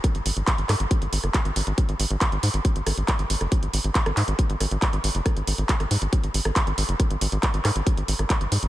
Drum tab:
HH |xxoxxxoxxxoxxxox|xxoxxxoxxxoxxxox|xxoxxxoxxxoxxxox|xxoxxxoxxxoxxxox|
CP |----x-x-----x---|----x-------x---|----x-x-----x---|----x-------x---|
SD |r-----r----r----|----r-----r----r|-----r----r-----|r----r-----r----|
BD |o---o---o---o---|o---o---o---o---|o---o---o---o---|o---o---o---o---|

HH |xxoxxxoxxxoxxxox|
CP |----x-x-----x---|
SD |r-----r----r----|
BD |o---o---o---o---|